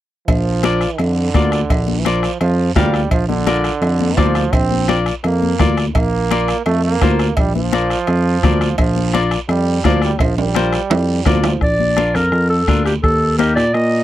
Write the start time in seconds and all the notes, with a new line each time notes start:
0.27 A#1 F3, bombo low, bombo rim, cowbell, high conga, long guiro
0.63 F4 A#4 D5, bombo rim, high conga, short guiro
0.81 bombo rim, short guiro
0.98 F2 D3, bombo rim, cowbell, high conga, long guiro
1.34 D2 F4 A#4 D5, bombo low, bombo rim, high conga, short guiro
1.52 bombo rim, short guiro
1.70 A#1, bombo low, bombo rim, cowbell, high conga, long guiro
1.88 high conga
1.99 E3
2.05 F3 F4 A#4 D5, bombo rim, high conga, short guiro
2.23 bombo rim, short guiro
2.41 F2 F3, bombo rim, cowbell, high conga, long guiro
2.75 D2 G3 F4 A#4 F5, bombo low, bombo rim, high conga, low conga, low timbale, short guiro
2.94 bombo rim, short guiro
3.11 A#1 F3, bombo low, bombo rim, cowbell, high conga, long guiro
3.28 D3, high conga
3.47 F4 A#4 D5, bombo rim, high conga, short guiro
3.64 bombo rim, short guiro
3.82 F2, bombo rim, cowbell, high conga, long guiro
4.00 high conga
4.17 D2 F3 F4 A#4 D5, bombo low, bombo rim, high conga, low timbale, short guiro
4.35 bombo rim, short guiro
4.53 A#1 C4, bombo low, bombo rim, cowbell, high conga, long guiro
4.71 high conga
4.88 F4 A#4 D5, bombo rim, high conga, short guiro
5.06 bombo rim, short guiro
5.24 F2 A#3, bombo rim, cowbell, high conga, long guiro
5.43 high conga
5.59 D2 F4 A#4 D5, bombo low, bombo rim, high conga, low conga, low timbale, short guiro
5.77 bombo rim, short guiro
5.95 A#1 A#3, bombo low, bombo rim, cowbell, high conga, long guiro
6.31 F4 A#4 D5, bombo rim, high conga, short guiro
6.48 bombo rim, short guiro
6.66 F2 A3, bombo rim, cowbell, high conga, long guiro
6.84 A#3
7.01 D2 F4 A#4 C5, bombo low, bombo rim, high conga, low timbale, short guiro
7.19 bombo rim, short guiro
7.37 A#1 G3, bombo low, bombo rim, cowbell, high conga, long guiro
7.55 F3, high conga
7.73 F4 A#4 D5, bombo rim, high conga, short guiro
7.90 bombo rim, short guiro
8.07 F2, bombo rim, cowbell, high conga, long guiro
8.43 D2 F4 A#4 D5, bombo low, bombo rim, high conga, low conga, short guiro
8.61 bombo rim, short guiro
8.78 A#1 F3, bombo low, bombo rim, cowbell, high conga, long guiro
8.96 high conga
9.13 F4 A#4 D5, bombo rim, high conga, short guiro
9.31 bombo rim, short guiro
9.49 F2 G3, bombo rim, cowbell, high conga, long guiro
9.84 D2 F3 F4 A#4 D5, bombo low, bombo rim, high conga, low timbale, short guiro
10.02 G3, bombo rim, short guiro
10.19 A#1 F3, bombo low, bombo rim, cowbell, high conga, high timbale, long guiro
10.38 G3, high timbale
10.55 F4 A#4 C5, bombo rim, high conga, short guiro
10.73 bombo rim, short guiro
10.90 F2, bombo rim, cowbell, high conga, low timbale, long guiro
11.25 D2 F3 F4 A#4 D5, bombo low, bombo rim, high conga, low conga, low timbale, short guiro
11.43 F3, bombo rim, low timbale, short guiro
11.61 A#1 D5, bombo low, bombo rim, high conga, long guiro
11.80 high conga
11.96 D4 F4 A#4, bombo rim, high conga, short guiro
12.15 F2 A#4, bombo rim, short guiro
12.32 F2, bombo rim, high conga, long guiro
12.50 A4
12.68 D2 D4 F4 A#4, bombo low, bombo rim, high conga, short guiro
12.86 G4, bombo rim, short guiro
13.03 D#2 A4, bombo low, bombo rim, high conga, long guiro
13.38 A#3 D#4 G4 A#4, bombo rim, high conga, short guiro
13.56 A#2 D5, bombo rim, short guiro
13.74 A#2 D#5, bombo rim, high conga, long guiro